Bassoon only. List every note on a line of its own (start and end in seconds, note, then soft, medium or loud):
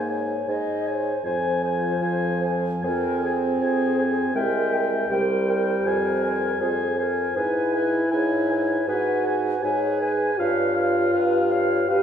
0.00 0.39 G#2 soft
0.48 1.16 G#2 soft
1.25 1.93 F2 soft
2.02 2.75 F2 soft
2.84 3.53 F2 soft
3.62 4.19 F2 soft
4.36 5.02 C2 soft
5.11 5.77 C2 soft
5.86 6.52 F2 soft
6.61 7.27 F2 soft
7.36 8.03 G#2 soft
8.12 8.79 G#2 medium
8.88 9.55 G#2 medium
9.64 10.31 G#2 soft
10.40 11.06 G2 medium
11.15 11.82 G2 medium
11.90 12.03 G2 soft